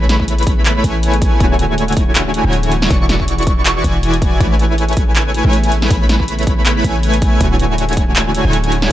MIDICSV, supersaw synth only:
0, 0, Header, 1, 2, 480
1, 0, Start_track
1, 0, Key_signature, 3, "major"
1, 0, Tempo, 375000
1, 1800, Time_signature, 4, 2, 24, 8
1, 11419, End_track
2, 0, Start_track
2, 0, Title_t, "Supersaw synth"
2, 0, Program_c, 0, 81
2, 0, Note_on_c, 0, 57, 101
2, 0, Note_on_c, 0, 64, 94
2, 0, Note_on_c, 0, 71, 96
2, 0, Note_on_c, 0, 73, 93
2, 0, Note_on_c, 0, 83, 111
2, 1056, Note_off_c, 0, 57, 0
2, 1056, Note_off_c, 0, 64, 0
2, 1056, Note_off_c, 0, 71, 0
2, 1056, Note_off_c, 0, 73, 0
2, 1056, Note_off_c, 0, 83, 0
2, 1082, Note_on_c, 0, 57, 101
2, 1082, Note_on_c, 0, 64, 95
2, 1082, Note_on_c, 0, 71, 90
2, 1082, Note_on_c, 0, 80, 112
2, 1083, Note_on_c, 0, 73, 92
2, 1775, Note_off_c, 0, 57, 0
2, 1775, Note_off_c, 0, 64, 0
2, 1776, Note_off_c, 0, 71, 0
2, 1776, Note_off_c, 0, 73, 0
2, 1776, Note_off_c, 0, 80, 0
2, 1799, Note_on_c, 0, 64, 73
2, 1800, Note_on_c, 0, 57, 71
2, 1800, Note_on_c, 0, 66, 74
2, 1801, Note_on_c, 0, 50, 74
2, 1801, Note_on_c, 0, 73, 76
2, 1801, Note_on_c, 0, 80, 86
2, 3101, Note_off_c, 0, 64, 0
2, 3102, Note_off_c, 0, 50, 0
2, 3102, Note_off_c, 0, 57, 0
2, 3102, Note_off_c, 0, 66, 0
2, 3102, Note_off_c, 0, 73, 0
2, 3102, Note_off_c, 0, 80, 0
2, 3132, Note_on_c, 0, 64, 73
2, 3132, Note_on_c, 0, 66, 75
2, 3133, Note_on_c, 0, 50, 77
2, 3133, Note_on_c, 0, 57, 70
2, 3133, Note_on_c, 0, 73, 72
2, 3133, Note_on_c, 0, 80, 88
2, 3694, Note_off_c, 0, 50, 0
2, 3694, Note_off_c, 0, 57, 0
2, 3694, Note_off_c, 0, 64, 0
2, 3694, Note_off_c, 0, 66, 0
2, 3694, Note_off_c, 0, 73, 0
2, 3694, Note_off_c, 0, 80, 0
2, 3718, Note_on_c, 0, 52, 102
2, 3718, Note_on_c, 0, 64, 94
2, 3718, Note_on_c, 0, 66, 97
2, 3718, Note_on_c, 0, 74, 96
2, 3718, Note_on_c, 0, 85, 115
2, 4893, Note_off_c, 0, 52, 0
2, 4893, Note_off_c, 0, 64, 0
2, 4893, Note_off_c, 0, 66, 0
2, 4893, Note_off_c, 0, 85, 0
2, 4894, Note_off_c, 0, 74, 0
2, 4919, Note_on_c, 0, 74, 96
2, 4920, Note_on_c, 0, 64, 90
2, 4920, Note_on_c, 0, 66, 95
2, 4920, Note_on_c, 0, 80, 112
2, 4921, Note_on_c, 0, 52, 97
2, 5614, Note_off_c, 0, 64, 0
2, 5614, Note_off_c, 0, 66, 0
2, 5614, Note_off_c, 0, 74, 0
2, 5614, Note_off_c, 0, 80, 0
2, 5615, Note_off_c, 0, 52, 0
2, 5640, Note_on_c, 0, 73, 67
2, 5641, Note_on_c, 0, 57, 74
2, 5641, Note_on_c, 0, 64, 72
2, 5641, Note_on_c, 0, 80, 84
2, 5642, Note_on_c, 0, 71, 71
2, 6942, Note_off_c, 0, 57, 0
2, 6942, Note_off_c, 0, 64, 0
2, 6942, Note_off_c, 0, 71, 0
2, 6942, Note_off_c, 0, 73, 0
2, 6942, Note_off_c, 0, 80, 0
2, 6975, Note_on_c, 0, 73, 73
2, 6975, Note_on_c, 0, 80, 91
2, 6976, Note_on_c, 0, 57, 76
2, 6976, Note_on_c, 0, 64, 72
2, 6976, Note_on_c, 0, 71, 73
2, 7535, Note_off_c, 0, 57, 0
2, 7535, Note_off_c, 0, 64, 0
2, 7535, Note_off_c, 0, 71, 0
2, 7535, Note_off_c, 0, 73, 0
2, 7535, Note_off_c, 0, 80, 0
2, 7562, Note_on_c, 0, 64, 93
2, 7562, Note_on_c, 0, 71, 91
2, 7562, Note_on_c, 0, 73, 92
2, 7562, Note_on_c, 0, 83, 117
2, 7563, Note_on_c, 0, 57, 102
2, 8735, Note_off_c, 0, 71, 0
2, 8735, Note_off_c, 0, 73, 0
2, 8735, Note_off_c, 0, 83, 0
2, 8736, Note_off_c, 0, 57, 0
2, 8736, Note_off_c, 0, 64, 0
2, 8763, Note_on_c, 0, 64, 90
2, 8764, Note_on_c, 0, 57, 100
2, 8764, Note_on_c, 0, 71, 94
2, 8764, Note_on_c, 0, 73, 95
2, 8765, Note_on_c, 0, 80, 111
2, 9456, Note_off_c, 0, 57, 0
2, 9456, Note_off_c, 0, 64, 0
2, 9456, Note_off_c, 0, 71, 0
2, 9457, Note_off_c, 0, 73, 0
2, 9457, Note_off_c, 0, 80, 0
2, 9485, Note_on_c, 0, 50, 80
2, 9485, Note_on_c, 0, 57, 74
2, 9485, Note_on_c, 0, 64, 71
2, 9485, Note_on_c, 0, 66, 69
2, 9486, Note_on_c, 0, 73, 72
2, 9486, Note_on_c, 0, 80, 89
2, 10784, Note_off_c, 0, 50, 0
2, 10784, Note_off_c, 0, 57, 0
2, 10784, Note_off_c, 0, 64, 0
2, 10784, Note_off_c, 0, 66, 0
2, 10784, Note_off_c, 0, 73, 0
2, 10784, Note_off_c, 0, 80, 0
2, 10816, Note_on_c, 0, 64, 72
2, 10816, Note_on_c, 0, 73, 75
2, 10817, Note_on_c, 0, 66, 73
2, 10818, Note_on_c, 0, 50, 80
2, 10818, Note_on_c, 0, 57, 72
2, 10818, Note_on_c, 0, 80, 88
2, 11375, Note_off_c, 0, 64, 0
2, 11375, Note_off_c, 0, 73, 0
2, 11376, Note_off_c, 0, 50, 0
2, 11376, Note_off_c, 0, 57, 0
2, 11376, Note_off_c, 0, 66, 0
2, 11377, Note_off_c, 0, 80, 0
2, 11419, End_track
0, 0, End_of_file